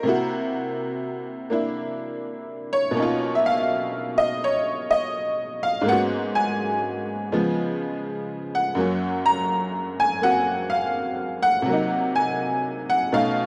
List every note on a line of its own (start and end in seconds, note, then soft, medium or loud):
0.00 2.95 C3 soft
0.00 1.21 A#4 medium
0.05 1.48 A#3 soft
0.05 1.51 E4 soft
0.05 2.98 F#4 medium
1.50 2.93 A#3 soft
1.50 2.97 D4 soft
1.50 2.97 E4 soft
2.73 3.38 C#5 medium
2.91 5.85 B2 medium
2.91 5.84 A#3 soft
2.97 5.87 C#4 soft
2.97 5.89 D#4 soft
3.02 5.90 F4 medium
3.35 3.44 E5 medium
3.46 4.20 F5 medium
4.18 4.23 D#5 medium
4.44 4.55 C#5 medium
4.91 5.65 D#5 medium
5.63 5.88 F5 medium
5.81 7.30 G#2 soft
5.81 7.31 G#3 soft
5.86 7.32 A#3 soft
5.86 7.32 B3 soft
5.86 5.99 F#5 medium
5.90 7.34 C#4 soft
5.90 7.35 F#4 medium
6.35 8.60 G#5 medium
7.32 8.78 C#3 soft
7.32 8.78 F3 medium
7.32 8.78 G#3 soft
7.32 8.78 B3 soft
8.55 9.23 F#5 medium
8.75 11.67 F#2 soft
8.75 11.64 F#3 soft
8.75 10.20 A#3 soft
8.80 11.70 C#4 soft
9.26 10.01 A#5 medium
10.00 10.25 G#5 medium
10.22 11.68 A#3 soft
10.22 11.68 C4 soft
10.22 11.69 F#4 soft
10.22 10.34 F#5 medium
10.70 11.45 F5 medium
11.43 12.12 F#5 loud
11.62 13.10 C3 soft
11.62 13.12 F#3 soft
11.69 13.14 A#3 soft
11.69 13.13 D#4 medium
12.16 12.84 G#5 medium
12.90 13.12 F#5 medium
13.12 13.46 B2 soft
13.12 13.46 A3 soft
13.12 13.46 C#4 soft
13.12 13.46 D#4 medium
13.12 13.46 F5 medium